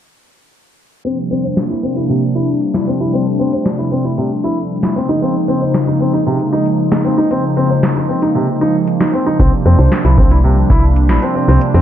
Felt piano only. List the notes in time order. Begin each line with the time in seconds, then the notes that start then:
1.05 C4
1.31 C4
1.44 C5
1.70 E4
1.83 C4
1.96 E4
2.09 C3
2.35 E4
2.74 E4
2.87 C4
3.00 E4
3.13 C4
3.40 C4
3.53 C5
3.79 E4
3.92 C4
4.05 E4
4.18 C3
4.44 E4
4.83 E4
4.96 C4
5.09 D#4
5.22 C4
5.48 C4
5.61 C5
5.87 D#4
6.00 C4
6.13 D#4
6.26 C3
6.53 D#4
6.92 D#4
7.05 C4
7.18 D#4
7.31 C4
7.57 C4
7.70 C5
7.96 D#4
8.09 C4
8.22 D#4
8.35 C3
8.61 D#4
9.00 D#4
9.13 C4
9.26 D#4
9.40 C4
9.66 C4
9.79 C5
10.05 E4
10.18 C4
10.31 E4
10.44 C3
10.70 E4
11.09 E4
11.22 C4
11.35 C4
11.48 C4
11.74 C4